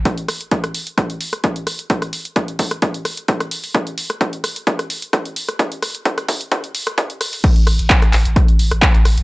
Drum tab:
CC |----------------|----------------|----------------|----------------|
HH |xxoxxxoxxxoxxxox|xxoxxxoxxxoxxxoo|xxoxxxoxxxoxxxox|xxoxxxoxxxoxxxoo|
CP |----------------|----------------|----------------|----------------|
SD |--r--r--r--r--r-|-r--r--r--r--r--|r--r--r--r--r--r|--r--r--r--r--r-|
BD |o---o---o---o---|o---o-o-o---o---|o---o---o---o---|o---o-o-o---o---|

CC |x---------------|
HH |xxoxxxoxxxoxxxox|
CP |----x-x-----x---|
SD |--r--r--r--r--r-|
BD |o---o---o---o---|